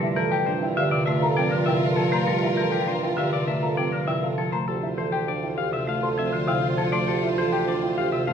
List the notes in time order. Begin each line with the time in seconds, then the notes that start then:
Already playing: G2 F4 A#4
0.02 E4 E5
0.16 E3 A4 A#4
0.32 G4 G5
0.46 D4 C5
0.62 E4 G5
0.77 D3 G4 E5 F5
0.91 C3 D5
1.06 A3 F4 E5
1.22 A4 A#5
1.37 F3 C4 D5 G5
1.51 D3 A#4
1.66 C3 E4 E5 G5
1.83 A4 F5
1.96 F3 F4 A4 A5
2.12 A3 C5 A#5
2.26 G3 G4 A4
2.42 E4 E5
2.57 E3 A4 A#4
2.72 G4 G5
2.88 D4 C5
3.03 E4 G5
3.17 D3 G4 E5 F5
3.33 C3 D5
3.48 A3 F4 E5
3.62 A4 A#5
3.77 F3 C4 D5 G5
3.92 D3 A#4
4.07 C3 E4 E5 G5
4.23 A4 F5
4.37 F3 F4 A4 A5
4.52 A3 C5 A#5
4.67 D2 F4 G4 A4 C5
4.82 E4 E5
4.98 E3 A4 C5
5.12 G4 G5
5.28 D4 D5
5.43 E4 G5
5.58 G4 F5
5.73 C3 E5
5.87 A3 F4 F5
6.03 A4 C6
6.18 F3 C4 E5
6.33 D3 C5
6.47 C3 E4 F5 G5
6.62 F5
6.77 F3 F4 A4 A5
6.92 A3 D5 C6
7.08 G4 A4
7.22 E4 E5
7.38 E3 A4 C5
7.52 G4 G5
7.68 D4 D5
7.82 E4 G5
7.98 G4 F5
8.12 C3 E5
8.27 A3 F4 F5